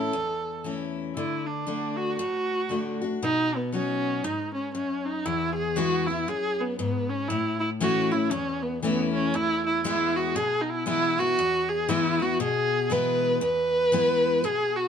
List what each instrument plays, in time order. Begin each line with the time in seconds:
Already playing: steel-string acoustic guitar C#4 E4, viola A4
0.13 steel-string acoustic guitar E2
0.64 steel-string acoustic guitar E3 A3 C#4 E4
1.16 steel-string acoustic guitar D3, viola E4
1.46 viola D4
1.67 steel-string acoustic guitar D3 A3 D4 F#4
1.96 viola F#4
2.17 steel-string acoustic guitar A2, viola F#4
2.69 steel-string acoustic guitar D3 A3 D4 F#4
3.02 steel-string acoustic guitar D4 F#4
3.23 steel-string acoustic guitar B2, viola D#4
3.56 viola B3
3.72 steel-string acoustic guitar F#3 B3 D#4 F#4, viola C#4
4.24 steel-string acoustic guitar G#2, viola D#4
4.54 viola C#4
4.74 steel-string acoustic guitar F#2, viola C#4
5.05 viola D#4
5.25 steel-string acoustic guitar E2, viola E4
5.55 viola G#4
5.76 steel-string acoustic guitar E3 G#3 B3 E4, viola F#4
6.06 steel-string acoustic guitar B3 E4, viola E4
6.28 steel-string acoustic guitar F#2, viola G#4
6.60 viola B3
6.78 steel-string acoustic guitar G#2, viola B3
7.09 viola C#4
7.28 steel-string acoustic guitar A2, viola E4
7.60 viola E4
7.80 steel-string acoustic guitar E3 A3 C#4 E4, viola F#4
8.11 steel-string acoustic guitar C#4 E4, viola E4
8.31 steel-string acoustic guitar E2, viola C#4
8.62 viola B3
8.82 steel-string acoustic guitar E3 A3 C#4 E4, viola B3
9.14 viola C#4
9.34 steel-string acoustic guitar E2, viola E4
9.66 viola E4
9.84 steel-string acoustic guitar E3 G#3 B3 E4, viola E4
10.16 viola F#4
10.36 steel-string acoustic guitar B2, viola G#4
10.61 viola D#4
10.69 viola E4
10.86 steel-string acoustic guitar E3 G#3 B3 E4, viola E4
11.18 steel-string acoustic guitar B3 E4, viola F#4
11.39 steel-string acoustic guitar E2
11.69 viola G#4
11.89 steel-string acoustic guitar E3 G#3 B3 E4, viola E4
12.20 steel-string acoustic guitar B3 E4, viola F#4
12.40 steel-string acoustic guitar B2, viola G#4
12.90 steel-string acoustic guitar E3 G#3 B3 E4, viola B4
13.41 steel-string acoustic guitar E2, viola B4
13.92 steel-string acoustic guitar E3 G#3 B3 E4
14.44 steel-string acoustic guitar B2, viola G#4
14.76 viola F#4